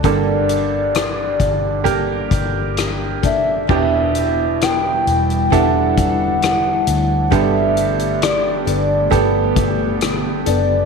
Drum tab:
CC |----------------|x---------------|----------------|
HH |x-x-x-x-x-x-x-x-|--x-x-xxx-x-x-x-|x-xxx-x-x-x-x-x-|
SD |----r-------r---|----r-------r---|----r-------r---|
BD |o-----o-o-o---o-|o-------o-o-----|o-------o-o-----|